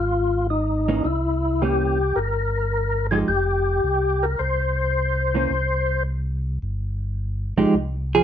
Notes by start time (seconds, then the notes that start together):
Already playing: G#1 F4
0.50 D#4
0.88 E3 A#3 C#4
1.04 C2 D#4 E4
1.62 E3 A#3 C#4 G4
2.16 G1 A#4
3.11 F3 G#3 D#4 G4 G#4
3.28 F1 G4
3.84 C2
4.23 A#4
4.39 C2 C5
5.34 E3 A#3 C#4
5.50 C2
6.62 G1
7.56 G1 F3 G#3 D#4 G4
7.74 C2
8.15 F3 G#4